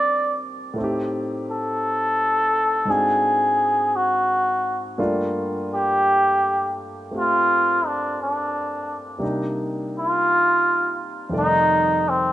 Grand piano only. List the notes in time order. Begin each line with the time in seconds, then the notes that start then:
Already playing: C3 D#3 G3 A#3 C4 D4
0.74 A2 A3
0.78 C4 D#4
0.84 G4
2.85 G#2 G#3 C4 D4
2.90 F#4
4.98 G2 G3 A3 A#3 F4
7.11 A3 C4 G4
9.18 C3 G3 A#3 D4
9.23 D#4
11.30 F2 C3 D#3 G3 A3
11.34 D5